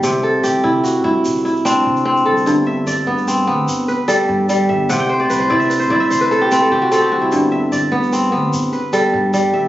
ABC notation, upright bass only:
X:1
M:12/8
L:1/16
Q:3/8=99
K:G
V:1 name="Upright bass" clef=bass
C,,4 C,,2 C,4 G,, z C,,6 C,4 C,,2 | G,,,4 G,,,2 G,,4 D,, z G,,,6 G,,4 G,,,2 | C,,4 C,,2 C,4 G,, z C,,6 C,4 C,,2 | G,,,4 G,,,2 G,,4 D,, z G,,,6 G,,4 G,,,2 |]